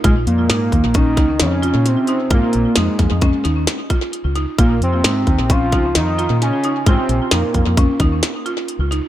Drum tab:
HH |xxxxxxxxxx|xxxxxxxxxx|xxxxxxxxxx|xxxxxxxxxx|
SD |--o--oo-o-|--oo-oo---|--o---o-o-|--o---o---|
BD |o--ooo----|o--oo--o--|o--ooo----|o--ooo----|